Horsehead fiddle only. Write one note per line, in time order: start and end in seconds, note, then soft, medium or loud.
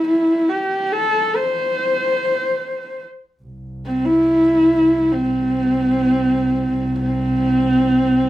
0.08 0.51 E4 medium
0.49 0.94 G4 medium
0.92 1.38 A4 medium
1.36 3.02 C5 medium
3.86 4.07 C4 medium
4.05 5.14 E4 medium
5.12 6.99 C4 medium
7.00 8.29 C4 medium